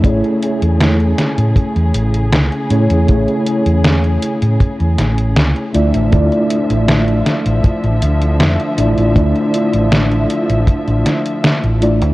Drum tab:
HH |xxxxxxxxxxxxxxxx|xxxxxxxxxxxxxxxx|xxxxxxxxxxxxxxxx|xxxxxxxxxxxxxxxx|
SD |----o-o-----o---|----o-----o-o---|----o-o-----o---|----o-----o-o---|
BD |o-------o-------|o-------o-------|o-------o-------|o-------o-------|